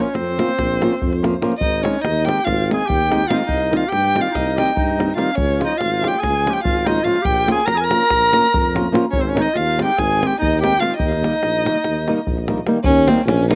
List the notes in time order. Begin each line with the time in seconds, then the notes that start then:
0.00 C#4 C#5
0.13 F2 C4 C5, davul high
0.38 F3 A#3 C#4 F4, davul high
0.49 davul high
0.58 A#1, davul high, davul low
0.81 F3 A#3 C#4 F4, davul high
0.93 davul high
1.02 F2, davul low
1.13 davul high
1.23 F3 A#3 C#4 F4, davul high
1.42 F3 A#3 C#4 F4, davul high
1.52 davul high
1.58 G#1 D#4 D#5, davul low
1.83 D#3 G#3 C4 C#4 D#4 C#5, davul high
2.01 D#2 D#4 D#5, davul high
2.24 D#3 G#3 C4 D#4 G4 G5
2.29 davul high
2.38 davul high
2.44 G#1 F4 F5, davul high, davul low
2.70 D#3 G#3 C4 D#4 G#4 G#5, davul high
2.81 davul high
2.86 D#2 G4 G5, davul low
3.01 davul high
3.10 D#3 G#3 C4 D#4, davul high
3.27 D#3 G#3 C4 F4 F5, davul high
3.31 D#4 F4 D#5
3.37 F4 F5, davul high
3.43 D#4 D#5 F5
3.49 C2, davul low
3.71 D#3 G3 C4 D#4 F4, davul high
3.77 F5
3.83 davul high
3.88 G4 G5
3.92 G2, davul high
4.05 davul high
4.14 D#3 G3 C4 D#4 F4, davul high
4.21 F5
4.28 D#4 F4
4.32 C2 D#5 F5, davul high, davul low
4.47 davul high
4.56 D#3 G3 C4 D#4 G4 G5, davul high
4.68 davul high
4.73 D#4 D#5, davul low
4.78 G2
4.89 davul high
4.98 D#3 G3 C4 D#4, davul high
5.10 davul high
5.15 D#3 G3 C4 F4 F5, davul high
5.19 D#4
5.32 C#4 C#5
5.38 C#2, davul low
5.59 F3 G#3 C#4 F4, davul high
5.64 D#4 D#5
5.77 F4 F5, davul high
5.81 G#1
6.02 F3 G#3 C#4 F4, davul high
6.06 G4 G5
6.14 davul high
6.19 G#4 G#5
6.23 C#2, davul high, davul low
6.46 F3 G#3 C#4 F4, davul high
6.51 G4 G5
6.56 davul high
6.63 G#1 F4 F5, davul low
6.76 davul high
6.85 F3 G#3 C#4 D#4 F4 D#5, davul high
7.03 F3 G#3 C#4 F4 F5
7.16 davul high
7.22 A#1 G4 G5, davul low
7.47 F3 A#3 C#4 F4, davul high
7.52 G#4 G#5
7.65 F2 A#4 A#5, davul high
7.75 G#4 G#5
7.80 A#4 A#5
7.91 F3 A#3 C#4 F4, davul high
8.01 davul high
8.10 A#1, davul high, davul low
8.33 F3 A#3 C#4 F4, davul high
8.45 davul high
8.54 F2, davul low
8.65 davul high
8.74 F3 A#3 C#4 F4, davul high
8.92 F3 A#3 C#4 F4, davul high
9.04 davul high
9.10 G#1 C#4 C#5, davul low
9.19 C4 C5
9.27 C#4 C#5
9.35 D#3 G#3 C4 D#4, davul high
9.41 D#4 D#5
9.54 D#2 F4 F5, davul high
9.78 D#3 G#3 C4 D#4, davul high
9.84 G4 G5
9.90 davul high
9.98 G#1 G#4 G#5, davul high, davul low
10.21 D#3 G#3 C4 D#4, davul high
10.27 G4 G5
10.32 davul high
10.39 D#2 D#4 D#5, davul low
10.53 davul high
10.61 D#3 G#3 C4 D#4 G4 G5, davul high
10.79 D#3 G#3 C4 D#4 F4 F5, davul high
10.91 davul high
10.97 D#2 D#4 D#5, davul low
11.12 davul high
11.22 D#3 G3 A#3 D#4, davul high
11.33 davul high
11.43 A#1, davul high
11.64 D#3 G3 A#3 D#4, davul high
11.76 davul high
11.84 D#2, davul high
12.07 D#3 G3 A#3 D#4, davul high
12.17 davul high
12.27 A#1, davul low
12.38 davul high
12.48 D#3 G3 A#3 D#4, davul high
12.58 davul high
12.66 D#3 G3 A#3 D#4, davul high
12.84 D#2 C#4, davul low
13.07 D#3 G3 A#3 C4 D#4, davul high
13.18 davul high
13.26 A#1 C#4, davul high
13.40 davul high
13.50 D#3 G3 A#3 D#4, davul high